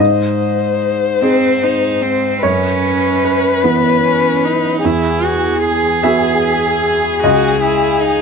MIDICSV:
0, 0, Header, 1, 4, 480
1, 0, Start_track
1, 0, Tempo, 813008
1, 1435, Time_signature, 6, 3, 24, 8
1, 1915, Tempo, 795756
1, 4915, End_track
2, 0, Start_track
2, 0, Title_t, "Violin"
2, 0, Program_c, 0, 40
2, 0, Note_on_c, 0, 72, 45
2, 1406, Note_off_c, 0, 72, 0
2, 1434, Note_on_c, 0, 71, 45
2, 2855, Note_off_c, 0, 71, 0
2, 2878, Note_on_c, 0, 68, 47
2, 4915, Note_off_c, 0, 68, 0
2, 4915, End_track
3, 0, Start_track
3, 0, Title_t, "Grand piano"
3, 0, Program_c, 1, 0
3, 0, Control_c, 1, 64, 127
3, 0, Note_on_c, 1, 44, 37
3, 0, Note_on_c, 1, 75, 51
3, 7, Control_c, 1, 64, 0
3, 113, Control_c, 1, 64, 127
3, 699, Note_off_c, 1, 44, 0
3, 721, Note_on_c, 1, 60, 29
3, 722, Note_on_c, 1, 63, 29
3, 726, Note_on_c, 1, 68, 31
3, 1410, Note_off_c, 1, 60, 0
3, 1411, Note_off_c, 1, 63, 0
3, 1413, Note_off_c, 1, 68, 0
3, 1413, Note_off_c, 1, 75, 0
3, 1433, Note_on_c, 1, 42, 36
3, 1435, Note_on_c, 1, 73, 49
3, 1447, Control_c, 1, 64, 0
3, 1544, Control_c, 1, 64, 127
3, 1891, Note_off_c, 1, 73, 0
3, 1917, Note_on_c, 1, 71, 40
3, 2135, Note_off_c, 1, 42, 0
3, 2142, Note_off_c, 1, 71, 0
3, 2153, Note_on_c, 1, 59, 32
3, 2158, Note_on_c, 1, 52, 30
3, 2160, Note_on_c, 1, 71, 33
3, 2853, Note_off_c, 1, 59, 0
3, 2856, Note_off_c, 1, 52, 0
3, 2857, Note_off_c, 1, 71, 0
3, 2881, Note_on_c, 1, 40, 39
3, 2892, Control_c, 1, 64, 0
3, 2977, Control_c, 1, 64, 127
3, 3581, Note_off_c, 1, 40, 0
3, 3598, Note_on_c, 1, 76, 59
3, 3604, Note_on_c, 1, 59, 33
3, 3605, Note_on_c, 1, 66, 34
3, 3607, Note_on_c, 1, 68, 35
3, 4294, Note_off_c, 1, 76, 0
3, 4297, Note_off_c, 1, 59, 0
3, 4297, Note_off_c, 1, 66, 0
3, 4298, Note_off_c, 1, 68, 0
3, 4322, Note_on_c, 1, 37, 43
3, 4323, Note_on_c, 1, 75, 59
3, 4329, Control_c, 1, 64, 0
3, 4441, Control_c, 1, 64, 127
3, 4915, Note_off_c, 1, 37, 0
3, 4915, Note_off_c, 1, 75, 0
3, 4915, End_track
4, 0, Start_track
4, 0, Title_t, "Cello"
4, 0, Program_c, 2, 42
4, 717, Note_on_c, 2, 60, 39
4, 964, Note_on_c, 2, 63, 38
4, 973, Note_off_c, 2, 60, 0
4, 1196, Note_on_c, 2, 60, 37
4, 1205, Note_off_c, 2, 63, 0
4, 1431, Note_on_c, 2, 61, 47
4, 1440, Note_off_c, 2, 60, 0
4, 2155, Note_on_c, 2, 59, 39
4, 2164, Note_off_c, 2, 61, 0
4, 2397, Note_off_c, 2, 59, 0
4, 2401, Note_on_c, 2, 61, 41
4, 2643, Note_on_c, 2, 63, 41
4, 2652, Note_off_c, 2, 61, 0
4, 2886, Note_on_c, 2, 64, 45
4, 2896, Note_off_c, 2, 63, 0
4, 3123, Note_on_c, 2, 66, 47
4, 3132, Note_off_c, 2, 64, 0
4, 3362, Note_off_c, 2, 66, 0
4, 3372, Note_on_c, 2, 68, 59
4, 4306, Note_off_c, 2, 68, 0
4, 4322, Note_on_c, 2, 66, 52
4, 4555, Note_off_c, 2, 66, 0
4, 4563, Note_on_c, 2, 64, 45
4, 4796, Note_on_c, 2, 63, 47
4, 4805, Note_off_c, 2, 64, 0
4, 4915, Note_off_c, 2, 63, 0
4, 4915, End_track
0, 0, End_of_file